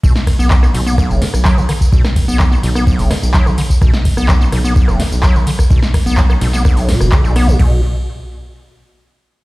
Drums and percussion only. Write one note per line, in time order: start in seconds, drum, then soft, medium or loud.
0.04 kick loud
0.04 ride medium
0.04 tambourine medium
0.16 snare medium
0.16 tambourine soft
0.27 kick medium
0.27 cross-stick medium
0.27 open hi-hat loud
0.27 ride medium
0.40 tambourine medium
0.50 kick loud
0.50 clap loud
0.50 ride medium
0.50 tambourine medium
0.63 cross-stick medium
0.63 tambourine soft
0.74 open hi-hat loud
0.74 ride medium
0.87 tambourine medium
0.98 kick loud
0.98 cross-stick medium
0.98 ride medium
0.98 tambourine medium
1.11 tambourine soft
1.22 snare medium
1.22 open hi-hat loud
1.22 ride medium
1.34 cross-stick medium
1.34 tambourine medium
1.45 kick loud
1.45 clap loud
1.45 ride medium
1.45 tambourine medium
1.58 tambourine soft
1.69 cross-stick medium
1.69 open hi-hat loud
1.69 ride medium
1.81 kick medium
1.81 tambourine medium
1.92 kick loud
1.92 ride medium
1.92 tambourine medium
2.05 cross-stick medium
2.05 snare medium
2.05 tambourine soft
2.16 kick medium
2.16 open hi-hat loud
2.16 ride medium
2.29 tambourine medium
2.39 kick loud
2.39 cross-stick medium
2.39 clap loud
2.39 ride medium
2.39 tambourine medium
2.53 tambourine soft
2.63 open hi-hat loud
2.63 ride medium
2.75 cross-stick medium
2.75 tambourine medium
2.87 kick loud
2.87 ride medium
2.87 tambourine medium
2.99 open hi-hat medium
2.99 tambourine soft
3.11 cross-stick medium
3.11 snare medium
3.11 open hi-hat loud
3.11 ride medium
3.23 tambourine medium
3.34 kick loud
3.34 clap loud
3.34 ride medium
3.34 tambourine medium
3.46 cross-stick medium
3.46 tambourine soft
3.58 open hi-hat loud
3.58 ride medium
3.70 kick medium
3.70 tambourine medium
3.82 kick loud
3.82 cross-stick medium
3.82 ride medium
3.82 tambourine medium
3.94 snare medium
3.94 tambourine soft
4.05 kick medium
4.05 open hi-hat loud
4.05 ride medium
4.17 cross-stick medium
4.17 tambourine medium
4.28 kick loud
4.28 clap loud
4.28 ride medium
4.28 tambourine medium
4.41 tambourine soft
4.52 cross-stick medium
4.52 open hi-hat loud
4.52 ride medium
4.65 tambourine medium
4.76 kick loud
4.76 ride medium
4.76 tambourine medium
4.88 cross-stick medium
4.88 tambourine soft
5.00 snare medium
5.00 open hi-hat loud
5.00 ride medium
5.12 tambourine medium
5.23 kick loud
5.23 cross-stick medium
5.23 clap loud
5.23 ride medium
5.23 tambourine medium
5.36 tambourine soft
5.47 open hi-hat loud
5.47 ride medium
5.59 kick medium
5.59 cross-stick medium
5.59 tambourine medium
5.70 kick loud
5.70 ride medium
5.70 tambourine medium
5.82 snare medium
5.82 tambourine soft
5.94 kick medium
5.94 cross-stick medium
5.94 open hi-hat loud
5.94 ride medium
6.07 tambourine medium
6.17 kick loud
6.17 clap loud
6.17 ride medium
6.17 tambourine medium
6.30 cross-stick medium
6.30 tambourine soft
6.41 snare soft
6.41 open hi-hat loud
6.41 ride medium
6.53 snare soft
6.53 tambourine medium
6.65 kick loud
6.65 cross-stick medium
6.65 ride medium
6.65 tambourine medium
6.77 open hi-hat medium
6.77 tambourine soft
6.89 snare medium
6.89 open hi-hat loud
6.89 ride medium
7.01 cross-stick medium
7.01 tambourine medium
7.12 kick loud
7.12 clap loud
7.12 ride medium
7.12 tambourine medium
7.25 tambourine soft
7.36 cross-stick medium
7.36 open hi-hat loud
7.36 ride medium
7.48 kick medium
7.48 tambourine medium
7.59 kick loud
7.59 crash medium